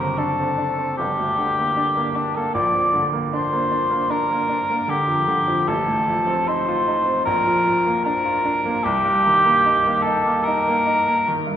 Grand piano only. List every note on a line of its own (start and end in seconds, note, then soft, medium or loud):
0.00 0.94 F#1 medium
0.00 1.00 F#2 soft
0.00 0.11 D3 soft
0.00 0.31 C4 soft
0.18 0.50 D4 soft
0.40 0.71 C4 soft
0.58 0.90 D4 soft
0.78 0.98 C4 soft
1.00 2.52 G1 medium
1.18 1.49 D2 soft
1.38 1.69 D3 soft
1.59 1.89 A#3 soft
1.77 2.08 D4 soft
1.97 2.28 A#3 soft
2.16 2.47 D4 soft
2.36 2.56 A#3 soft
2.55 5.64 A#1 medium
2.74 3.06 F2 soft
2.93 3.25 D3 soft
3.13 3.45 A#3 soft
3.33 3.65 D4 soft
3.53 3.84 A#3 soft
3.72 4.03 D4 soft
3.91 4.23 A#3 soft
4.10 4.42 D4 medium
4.31 4.63 A#3 soft
4.49 4.82 D4 soft
4.70 5.02 A#3 soft
4.88 5.21 D3 medium
5.08 5.40 F2 soft
5.28 5.60 D3 soft
5.48 5.68 F2 soft
5.68 7.22 A1 medium
5.88 6.20 A2 soft
6.07 6.39 F3 soft
6.27 6.59 C4 medium
6.48 6.80 D#4 medium
6.68 6.99 F4 soft
6.87 7.19 D#4 soft
7.06 7.26 C4 soft
7.27 8.79 A#1 medium
7.47 7.78 F2 soft
7.66 7.97 F3 soft
7.86 8.17 A#3 soft
8.06 8.37 D4 medium
8.25 8.56 F4 soft
8.45 8.76 D4 soft
8.65 8.84 A#3 medium
8.85 11.57 C2 medium
9.05 9.36 G2 soft
9.27 9.57 D#3 soft
9.45 9.76 A#3 medium
9.66 9.97 D#4 medium
9.86 10.17 A#3 soft
10.07 10.38 D#4 medium
10.27 10.58 A#3 soft
10.47 10.78 D#4 medium
10.68 10.99 A#3 medium
10.87 11.18 D#4 medium
11.08 11.39 A#3 soft
11.28 11.57 D#3 soft
11.47 11.57 G2 soft